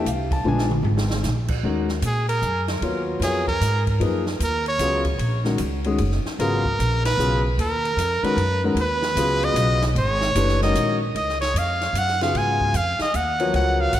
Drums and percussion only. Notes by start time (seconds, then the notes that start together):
0.06 hi-hat pedal, ride
0.31 kick, ride
0.45 mid tom
0.58 snare
0.71 mid tom
0.85 floor tom
0.98 snare
1.11 snare
1.23 snare, hi-hat pedal
1.48 kick, crash
1.89 snare
2.02 hi-hat pedal, ride
2.29 ride
2.42 hi-hat pedal
2.68 snare, ride
2.82 ride
3.22 snare, hi-hat pedal, ride
3.48 kick, ride
3.61 hi-hat pedal, ride
3.87 kick, ride
4.01 ride
4.26 snare
4.40 hi-hat pedal, ride
4.66 ride
4.79 hi-hat pedal, ride
5.05 kick, ride
5.19 ride
5.45 snare
5.58 hi-hat pedal, ride
5.84 ride
5.98 ride
6.12 snare
6.26 snare
6.39 ride
6.65 kick
6.80 hi-hat pedal, ride
7.05 snare, ride
7.20 hi-hat pedal
7.59 ride
7.85 ride
7.98 hi-hat pedal, ride
8.24 ride
8.38 ride
8.77 ride
9.02 snare
9.17 hi-hat pedal, ride
9.43 ride
9.56 hi-hat pedal, ride
9.82 snare, ride
9.96 ride
10.21 snare
10.35 hi-hat pedal, ride
10.49 snare
10.62 snare
10.75 hi-hat pedal, ride
11.16 ride
11.29 snare
11.41 snare, ride
11.56 hi-hat pedal, ride
11.81 snare, ride
11.95 hi-hat pedal, ride
12.08 snare
12.21 snare, ride
12.35 ride
12.60 kick
12.74 hi-hat pedal, ride
12.99 snare, ride
13.14 hi-hat pedal, ride
13.39 ride
13.54 ride
13.93 hi-hat pedal, ride